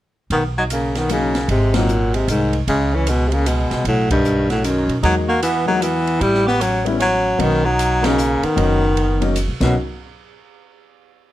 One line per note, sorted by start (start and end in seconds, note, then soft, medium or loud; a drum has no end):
0.30 1.45 B1 medium
0.30 0.43 D#3 medium
0.30 0.43 B3 medium
0.30 kick soft
0.30 ride soft
0.58 0.64 F#3 medium
0.58 0.64 D#4 medium
0.70 0.99 C#3 medium
0.70 0.99 A#3 medium
0.70 hi-hat pedal medium
0.70 ride medium
0.95 1.10 D#3 medium
0.95 1.10 B3 medium
0.95 snare soft
0.95 ride soft
1.09 1.48 C#3 medium
1.09 1.32 F#3 soft
1.09 1.32 A#3 soft
1.09 1.47 A#3 medium
1.09 1.32 C#4 soft
1.09 1.33 D#4 medium
1.09 hi-hat pedal soft
1.09 ride medium
1.35 snare soft
1.35 ride soft
1.48 2.23 G#1 medium
1.48 1.77 C3 medium
1.48 1.77 G#3 medium
1.48 kick soft
1.48 ride soft
1.74 2.17 A#2 medium
1.74 1.87 F#3 medium
1.74 2.17 F#3 medium
1.74 1.87 A#3 soft
1.74 1.87 C4 soft
1.74 1.88 D#4 medium
1.74 snare medium
1.74 ride medium
1.89 hi-hat pedal medium
2.14 2.28 C3 medium
2.14 2.28 G#3 medium
2.14 ride soft
2.28 2.64 C2 medium
2.28 2.59 G#2 medium
2.28 2.59 D#3 medium
2.28 hi-hat pedal medium
2.28 ride medium
2.53 ride soft
2.67 3.67 C#2 medium
2.67 2.97 C#3 medium
2.67 2.95 G#3 medium
2.67 kick soft
2.67 ride medium
2.94 3.11 E3 medium
2.94 3.09 C#4 medium
3.07 3.29 B2 medium
3.07 3.26 G#3 medium
3.07 hi-hat pedal soft
3.07 ride medium
3.26 3.35 C3 medium
3.26 3.34 G#3 soft
3.32 3.49 C#3 medium
3.32 3.48 A#3 medium
3.32 ride soft
3.46 3.86 B2 medium
3.46 3.86 G#3 medium
3.46 hi-hat pedal medium
3.46 ride medium
3.71 3.84 C2 medium
3.71 snare soft
3.71 ride soft
3.85 4.85 B1 medium
3.85 4.10 A2 medium
3.85 4.10 F#3 medium
3.85 kick soft
3.85 ride medium
4.10 4.47 G2 medium
4.10 4.48 D#3 medium
4.10 kick medium
4.10 ride medium
4.25 hi-hat pedal medium
4.50 4.66 A2 medium
4.50 4.66 F#3 medium
4.50 snare soft
4.50 ride soft
4.64 4.96 F#2 medium
4.64 4.96 D#3 medium
4.64 hi-hat pedal soft
4.64 ride medium
4.88 5.01 B2 medium
4.88 ride soft
5.02 6.17 E2 medium
5.02 5.25 F#3 medium
5.02 5.15 F#3 medium
5.02 5.26 G#3 soft
5.02 5.26 A#3 soft
5.02 5.14 D#4 medium
5.02 5.26 D#4 medium
5.02 kick soft
5.02 ride medium
5.28 5.42 A#3 medium
5.28 5.42 F#4 medium
5.43 5.66 E3 medium
5.43 5.66 B3 medium
5.43 hi-hat pedal medium
5.43 ride medium
5.66 5.80 F#3 medium
5.66 5.83 F#3 medium
5.66 5.80 G#3 medium
5.66 5.80 A#3 medium
5.66 5.83 D#4 medium
5.66 5.80 F#4 medium
5.81 6.24 E3 medium
5.81 6.22 B3 medium
5.81 hi-hat pedal soft
5.81 ride medium
6.07 ride soft
6.21 7.35 A1 medium
6.21 6.47 G3 medium
6.21 6.46 E4 medium
6.21 kick soft
6.21 ride medium
6.35 snare soft
6.47 6.63 B3 medium
6.47 6.62 G4 medium
6.47 snare soft
6.61 6.86 F#3 medium
6.61 6.86 C#4 medium
6.61 hi-hat pedal medium
6.61 ride medium
6.85 6.98 G3 medium
6.85 6.98 B3 medium
6.85 6.98 C#4 medium
6.85 6.99 E4 medium
6.85 ride soft
6.99 7.42 F#3 medium
6.99 7.41 C#4 medium
6.99 ride medium
7.38 8.39 B1 medium
7.38 7.67 D#3 medium
7.38 7.61 F#3 medium
7.38 7.61 A#3 medium
7.38 7.65 B3 medium
7.38 7.61 C#4 medium
7.38 7.62 D#4 medium
7.38 kick soft
7.38 ride medium
7.64 8.07 F#3 medium
7.64 8.05 D#4 medium
7.79 hi-hat pedal medium
7.79 ride medium
8.02 8.46 C#3 medium
8.02 8.15 F#3 medium
8.02 8.16 A#3 medium
8.02 8.46 A#3 medium
8.02 8.16 C#4 medium
8.02 8.16 D#4 medium
8.02 snare medium
8.02 ride medium
8.18 hi-hat pedal medium
8.43 9.36 D#3 medium
8.43 9.36 B3 medium
8.43 muted upright bass stroke soft
8.43 ride soft
8.55 9.45 F#1 medium
8.55 8.79 F#3 medium
8.55 8.79 A#3 medium
8.55 8.79 C#4 medium
8.55 8.79 D#4 medium
8.55 kick soft
8.55 ride medium
8.97 ride soft
9.20 9.33 F#3 medium
9.20 9.34 A#3 medium
9.20 9.34 C#4 medium
9.20 9.34 D#4 medium
9.20 ride soft
9.36 hi-hat pedal medium
9.36 ride medium
9.48 9.59 B1 medium
9.60 9.74 B1 medium
9.60 9.75 B2 medium
9.60 9.73 F#3 medium
9.60 9.75 F#3 medium
9.60 9.73 A#3 medium
9.60 9.74 C#4 medium
9.60 9.74 D#4 medium
9.60 kick medium
9.60 snare medium
9.60 crash medium